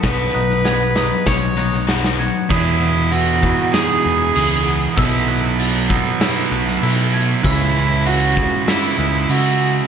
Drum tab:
CC |----------------|x---x---x---x---|x---x---x---x---|x---x---x---x---|
SD |o--oo-o-o-ooooo-|--------o-------|--------o--o----|--------o-------|
BD |o-------o-------|o-----o---------|o-----o---------|o-----o---------|